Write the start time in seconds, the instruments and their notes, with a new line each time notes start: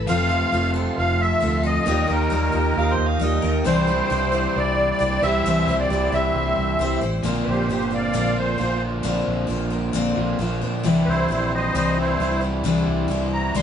Already playing: tonewheel organ A4
0.07 fingered electric bass F1, overdriven electric guitar F2 C3, twelve-string acoustic guitar F3 A3 C4 F4 A4, upright piano F4 A4 C5, tonewheel organ F4 C5 C6, accordion F5
0.29 twelve-string acoustic guitar C4 F4 A4
0.52 fingered electric bass F1, twelve-string acoustic guitar A3 C4 F4 A4, upright piano F4 A4 C5
0.74 twelve-string acoustic guitar C4 F4 A4, upright piano F4 A4 C5
0.98 fingered electric bass F1, upright piano F4 A4 C5, accordion F5
1.21 accordion E5
1.40 fingered electric bass D2, twelve-string acoustic guitar A3 C4 F4 A4, upright piano F4 A4 C5
1.63 twelve-string acoustic guitar C4 F4 A4, accordion D#5
1.86 fingered electric bass D#2, twelve-string acoustic guitar D#3 G3 D#4 F4 A#4, overdriven electric guitar A#3 G4, upright piano F4 G4 D#5, tonewheel organ G4 D#5 A#5
2.07 fingered electric bass D#2, twelve-string acoustic guitar D#4 F4 A#4, accordion A#4
2.30 fingered electric bass D#2, twelve-string acoustic guitar G3 D#4 F4 A#4, upright piano F4 G4 D#5
2.52 fingered electric bass D#2, twelve-string acoustic guitar D#4 F4 A#4, upright piano F4 G4 D#5
2.76 fingered electric bass D#2, upright piano F4 G4 D#5, harmonica F5
2.93 harmonica C5
2.98 fingered electric bass D#2
3.07 harmonica F5
3.19 fingered electric bass D#2, twelve-string acoustic guitar G3 D#4 F4 A#4, upright piano F4 G4 D#5
3.24 harmonica D#5
3.42 fingered electric bass D#2, twelve-string acoustic guitar D#4 F4 A#4
3.64 fingered electric bass C2, twelve-string acoustic guitar C3 E3 G3 D4 E4 C5, overdriven electric guitar C4, upright piano E4 C5 D5, accordion C5, tonewheel organ D5 E5 C6
3.87 twelve-string acoustic guitar G3 D4 E4 C5
4.10 fingered electric bass C2, twelve-string acoustic guitar G3 D4 E4 C5, upright piano E4 C5 D5
4.32 twelve-string acoustic guitar G3 D4 E4 C5, upright piano E4 C5 D5
4.56 fingered electric bass C2, upright piano E4 C5 D5, accordion D5
4.91 accordion D5
4.99 fingered electric bass C2, twelve-string acoustic guitar G3 D4 E4 C5, upright piano E4 C5
5.03 upright piano D5
5.21 fingered electric bass C2, overdriven electric guitar C3 E3, twelve-string acoustic guitar C4 E4 C5, upright piano G4 C5 E5, tonewheel organ C5, accordion E5
5.25 twelve-string acoustic guitar G3
5.46 fingered electric bass C2, twelve-string acoustic guitar C3 E3 G3 C4 E4 C5
5.68 fingered electric bass C2, twelve-string acoustic guitar G3 C4 E4 C5
5.80 accordion D5
5.90 fingered electric bass C2, twelve-string acoustic guitar G3 C4 E4 C5, upright piano G4 C5 E5
6.12 fingered electric bass C2, twelve-string acoustic guitar G3 C4 E4 C5, upright piano G4 C5 E5, accordion E5
6.35 fingered electric bass C2, upright piano G4 C5 E5
6.58 fingered electric bass C2
6.79 fingered electric bass C2, twelve-string acoustic guitar G3 C4 E4 C5, upright piano G4 C5 E5
7.01 fingered electric bass A1, twelve-string acoustic guitar G3 C4 E4 C5
7.23 fingered electric bass A#1, twelve-string acoustic guitar A#2 D3 A#3 C4 F4 C5, overdriven electric guitar D4
7.44 fingered electric bass A#1, accordion G4 B4
7.49 accordion C5
7.69 fingered electric bass G1, twelve-string acoustic guitar A#3 C4 F4 C5, accordion G4 C5
7.91 twelve-string acoustic guitar A#3 C4 F4 C5, accordion D5 F5
8.13 fingered electric bass A#1, twelve-string acoustic guitar A#2 D3 A#3 C4 F4 C5, accordion D5 F5
8.36 overdriven electric guitar A#2 D3 A#3 D4 F4, accordion C5
8.58 fingered electric bass A#1, overdriven electric guitar A#2 D3 D4, twelve-string acoustic guitar A#3 C4 F4 C5
9.03 fingered electric bass A#1, twelve-string acoustic guitar A#2 D3 A#3 C4 F4 C5, overdriven electric guitar D4
9.27 fingered electric bass A#1
9.47 fingered electric bass A#1, twelve-string acoustic guitar A#3 C4 F4 C5
9.70 twelve-string acoustic guitar A#3 C4 F4 C5
9.93 fingered electric bass A#1, twelve-string acoustic guitar A#2 D3 A#3 C4 F4 C5
10.16 fingered electric bass A#1, overdriven electric guitar A#2 D3 A#3 D4 F4
10.39 fingered electric bass A#1, overdriven electric guitar A#2 D3 D4, twelve-string acoustic guitar A#3 C4 F4 C5
10.61 fingered electric bass A#2, twelve-string acoustic guitar A#3 C4 F4 C5
10.83 fingered electric bass C2, twelve-string acoustic guitar C3 E3 G3 D4 E4 C5, overdriven electric guitar C4
11.05 fingered electric bass C2, accordion E4 B4 C5
11.28 fingered electric bass A#1, twelve-string acoustic guitar G3 D4 E4 C5, accordion E4
11.33 accordion C5
11.54 accordion C5 D#5
11.75 fingered electric bass C2, twelve-string acoustic guitar C3 E3 G3 D4 E4 C5, accordion C5 D#5
11.97 overdriven electric guitar C3 E3 G3 C4 E4, accordion E4
12.01 accordion C5
12.18 fingered electric bass C2, overdriven electric guitar C3 E3 C4, twelve-string acoustic guitar G3 D4
12.22 twelve-string acoustic guitar E4 C5
12.41 twelve-string acoustic guitar G3 D4 E4 C5
12.64 fingered electric bass C2, twelve-string acoustic guitar C3 E3 G3 D4 E4 C5, overdriven electric guitar C4
12.88 fingered electric bass C2
13.08 fingered electric bass C2, twelve-string acoustic guitar G3 D4 E4 C5
13.33 accordion A#5
13.54 fingered electric bass C2, twelve-string acoustic guitar C3 E3 G3 D4 E4 C5, accordion C6